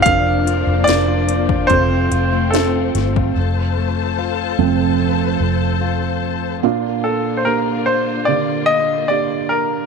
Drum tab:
HH |x-x-x-x-x-x-x-x-|----------------|----------------|
SD |----o-------o-o-|----------------|----------------|
BD |o------oo------o|----------------|----------------|